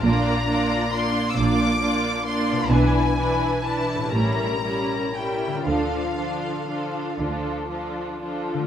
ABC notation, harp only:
X:1
M:6/8
L:1/8
Q:3/8=41
K:Dm
V:1 name="Harp"
[B,,B,Fd]6 | [=B,,DE=B]3 [A,,^CG_B]3 | [D,DFA]6 |]